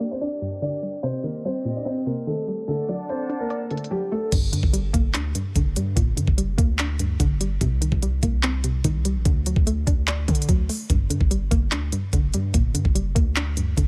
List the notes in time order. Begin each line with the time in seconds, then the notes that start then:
Already playing: G2 D3 G3 G4 A#4 D5
0.00 A#3, closed hi-hat
0.11 C4 C5
0.21 D4 D5, closed hi-hat
0.42 G2, closed hi-hat
0.62 D3 D4 D5, closed hi-hat
0.83 G3, closed hi-hat
1.03 C3 C4 C5 D#5, closed hi-hat
1.23 D#3 A#3 A#4, closed hi-hat
1.45 G3 C4 C5, closed hi-hat
1.65 A#2, closed hi-hat
1.76 D4 D5
1.85 C4 C5, closed hi-hat
2.06 C3 A#3 A#4, closed hi-hat
2.27 D#3 A3 A4, closed hi-hat
2.47 G3, closed hi-hat
2.68 D3 A3 D4 A4 D5 F#5 A5, closed hi-hat
2.89 F#3 D4 D5, closed hi-hat
3.09 C4 C5, closed hi-hat
3.29 D4, closed hi-hat
3.40 A#3 A#4
3.50 D5, closed hi-hat
3.71 D3 A3 A4, closed hi-hat
3.77 closed hi-hat
3.84 closed hi-hat
3.91 F#3 G3 G4
4.11 A3 A4
4.32 G1 G2, kick, closed hi-hat, crash
4.53 G2 D3, closed hi-hat
4.63 G1, kick
4.73 G3, closed hi-hat
4.93 G1 A#3, kick, closed hi-hat
5.14 D2 D4, clap, closed hi-hat
5.35 G2, closed hi-hat
5.56 F#1 D3, kick, closed hi-hat
5.76 G2 G3, closed hi-hat
5.96 G1 A#2, kick, closed hi-hat
6.17 G2 D3, closed hi-hat
6.27 F#1, kick
6.38 G3, closed hi-hat
6.58 D2 A#3, kick, closed hi-hat
6.79 D4, clap, closed hi-hat
6.99 G2, closed hi-hat
7.20 G1 D3, kick, closed hi-hat
7.41 G3, closed hi-hat
7.61 C2 C3, kick, closed hi-hat
7.81 D#3, closed hi-hat
7.92 C2, kick
8.02 G3, closed hi-hat
8.23 C2 A#3, kick, closed hi-hat
8.43 C4, clap, closed hi-hat
8.64 C3, closed hi-hat
8.84 C2 D#3, kick, closed hi-hat
9.05 G3, closed hi-hat
9.15 A#1
9.25 D2 D3, kick, closed hi-hat
9.46 F#3, closed hi-hat
9.56 D2, kick
9.67 A3, closed hi-hat
9.87 D2 D4, kick, closed hi-hat
10.07 D5, clap, closed hi-hat
10.28 D3, kick, closed hi-hat
10.35 closed hi-hat
10.42 closed hi-hat
10.49 D2 F#3, kick, closed hi-hat
10.69 A3, open hi-hat
10.90 G1 G2, kick, closed hi-hat
11.10 G2 D3, closed hi-hat
11.21 G1, kick
11.31 G3, closed hi-hat
11.51 G1 A#3, kick, closed hi-hat
11.72 D2 D4, clap, closed hi-hat
11.92 G2, closed hi-hat
12.13 F#1 D3, kick, closed hi-hat
12.34 G2 G3, closed hi-hat
12.54 G1 A#2, kick, closed hi-hat
12.74 G2 D3, closed hi-hat
12.85 F#1, kick
12.95 G3, closed hi-hat
13.15 D2 A#3, kick, closed hi-hat
13.36 D4, clap, closed hi-hat
13.57 G2, closed hi-hat
13.77 G1 D3, kick, closed hi-hat